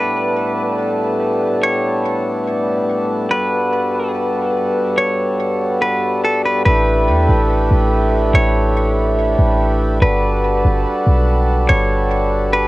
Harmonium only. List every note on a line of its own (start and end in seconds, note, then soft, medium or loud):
0.00 3.27 A2 medium
0.00 6.62 G3 medium
0.00 6.62 B3 medium
0.00 3.27 D4 medium
0.00 6.62 A4 medium
3.31 6.63 G2 medium
3.31 6.63 F#4 medium
6.66 9.98 A3 medium
6.66 9.98 D4 medium
6.66 9.98 E4 medium
6.66 9.98 G4 medium
6.66 12.68 B4 medium
10.02 12.68 G3 medium
10.02 12.68 D4 medium
10.02 12.68 F#4 medium
10.02 12.68 A4 medium